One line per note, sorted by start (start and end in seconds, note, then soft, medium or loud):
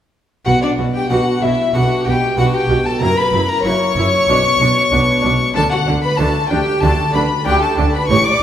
0.45 0.54 B1 medium
0.45 0.54 B2 medium
0.45 0.75 B2 medium
0.45 0.54 F#4 medium
0.45 0.61 F#4 medium
0.45 0.52 F#5 medium
0.45 0.61 F#5 medium
0.62 0.70 D4 medium
0.62 0.70 D5 medium
0.78 0.86 B1 medium
0.78 0.86 B2 medium
0.78 1.07 B2 medium
0.78 0.86 F#4 medium
0.94 1.10 G4 medium
0.94 1.09 G5 medium
0.94 1.10 G5 medium
1.10 1.18 B1 medium
1.10 1.18 B2 medium
1.10 1.39 B2 medium
1.10 1.56 B3 soft
1.10 1.57 D4 soft
1.10 1.42 F#4 medium
1.10 1.57 F#4 soft
1.10 1.19 F#4 medium
1.10 1.42 F#5 medium
1.10 1.44 F#5 medium
1.41 1.50 B1 medium
1.41 1.50 B2 medium
1.41 1.71 B2 medium
1.41 1.74 E4 medium
1.41 1.50 F#4 medium
1.41 1.74 E5 medium
1.41 1.75 E5 medium
1.73 1.82 B1 medium
1.73 1.82 B2 medium
1.73 2.03 B2 medium
1.73 2.20 B3 medium
1.73 2.21 D4 soft
1.73 2.05 F#4 medium
1.73 1.82 F#4 medium
1.73 2.21 F#4 medium
1.73 2.06 F#5 medium
2.05 2.14 B1 medium
2.05 2.34 B2 medium
2.05 2.14 B2 medium
2.05 2.14 F#4 medium
2.05 2.38 G4 medium
2.05 2.37 G5 medium
2.05 2.38 G5 medium
2.37 2.45 B1 medium
2.37 2.66 B2 medium
2.37 2.46 B2 medium
2.37 2.83 B3 soft
2.37 2.84 D4 medium
2.37 2.53 F#4 medium
2.37 2.84 F#4 medium
2.37 2.46 F#4 medium
2.37 2.44 F#5 medium
2.37 2.45 F#5 medium
2.54 2.86 G4 medium
2.54 2.85 G5 medium
2.54 2.87 G5 medium
2.69 2.77 B1 medium
2.69 2.77 B2 medium
2.69 2.98 B2 medium
2.69 2.78 F#4 medium
2.86 3.02 A4 medium
2.86 3.00 A5 medium
2.86 3.02 A5 medium
3.00 3.09 F#1 medium
3.00 3.09 F#2 medium
3.00 3.30 F#2 medium
3.00 3.10 E4 medium
3.00 3.18 A#4 medium
3.00 3.19 A#5 medium
3.00 3.17 A#5 loud
3.17 3.50 B4 medium
3.17 3.49 B5 loud
3.17 3.51 B5 medium
3.33 3.41 F#1 medium
3.33 3.41 F#2 medium
3.33 3.62 F#2 medium
3.33 3.41 E4 medium
3.49 3.65 A#4 medium
3.49 3.64 A#5 medium
3.49 3.66 A#5 medium
3.65 3.73 F#1 medium
3.65 3.73 F#2 medium
3.65 3.94 F#2 medium
3.65 4.11 A#3 soft
3.65 3.73 E4 medium
3.65 4.11 E4 soft
3.65 4.11 F#4 medium
3.65 5.56 C#5 medium
3.65 5.55 C#6 loud
3.65 5.51 C#6 medium
3.96 4.04 F#1 medium
3.96 4.26 F#2 medium
3.96 4.05 F#2 medium
3.96 4.05 E4 medium
4.28 4.36 B1 medium
4.28 4.57 B2 medium
4.28 4.37 B2 medium
4.28 4.37 D4 medium
4.60 4.68 B1 medium
4.60 4.69 B2 medium
4.60 4.90 B2 medium
4.60 4.69 D4 medium
4.92 5.00 B1 medium
4.92 5.01 B2 medium
4.92 5.21 B2 medium
4.92 5.38 B3 medium
4.92 5.00 D4 medium
4.92 5.38 D4 medium
4.92 5.39 F#4 medium
5.23 5.32 B1 medium
5.23 5.32 B2 medium
5.23 5.53 B2 medium
5.23 5.31 D4 medium
5.55 5.63 D2 medium
5.55 5.64 D3 medium
5.55 5.84 D3 medium
5.55 5.63 D4 medium
5.55 5.62 A4 loud
5.55 5.61 A5 loud
5.55 5.70 A5 medium
5.70 5.80 F#4 medium
5.70 5.78 F#5 medium
5.70 6.02 F#5 loud
5.87 5.95 D2 medium
5.87 5.95 D3 medium
5.87 6.16 D3 medium
5.87 5.95 D4 medium
6.02 6.19 B4 medium
6.02 6.19 B5 medium
6.17 6.26 D2 medium
6.17 6.27 D3 medium
6.17 6.48 D3 medium
6.17 6.65 A3 medium
6.17 6.26 D4 medium
6.17 6.65 D4 medium
6.17 6.66 F#4 medium
6.17 6.51 A4 medium
6.17 6.48 A5 medium
6.17 6.50 A5 medium
6.49 6.58 D2 medium
6.49 6.79 D3 medium
6.49 6.59 D3 medium
6.49 6.58 D4 medium
6.49 6.82 G4 medium
6.49 6.82 G5 medium
6.49 6.81 G5 medium
6.80 6.90 D2 medium
6.80 7.11 D3 medium
6.80 6.90 D3 medium
6.80 7.28 A3 medium
6.80 6.90 D4 medium
6.80 7.28 D4 medium
6.80 7.29 F#4 medium
6.80 7.15 A4 medium
6.80 7.13 A5 loud
6.80 7.13 A5 medium
7.13 7.22 D2 medium
7.13 7.43 D3 medium
7.13 7.22 D3 medium
7.13 7.22 D4 medium
7.13 7.23 B4 medium
7.13 7.45 B5 loud
7.13 7.22 B5 medium
7.45 7.54 D2 medium
7.45 7.74 D3 medium
7.45 7.54 D3 medium
7.45 7.92 A3 medium
7.45 7.53 D4 medium
7.45 7.92 D4 medium
7.45 7.92 F#4 medium
7.45 7.62 G4 medium
7.45 7.61 G5 loud
7.45 7.61 G5 medium
7.61 7.94 A4 medium
7.61 7.93 A5 medium
7.61 7.91 A5 medium
7.77 7.85 D2 medium
7.77 8.06 D3 medium
7.77 7.86 D3 medium
7.77 7.85 D4 medium
7.92 8.09 B4 medium
7.92 8.07 B5 medium
7.92 8.10 B5 medium
8.08 8.17 A1 medium
8.08 8.38 A2 medium
8.08 8.17 A2 medium
8.08 8.17 G4 medium
8.08 8.15 C#5 loud
8.08 8.26 C#6 loud
8.08 8.25 C#6 loud
8.24 8.43 D5 medium
8.24 8.43 D6 medium
8.24 8.43 D6 loud
8.40 8.43 A2 medium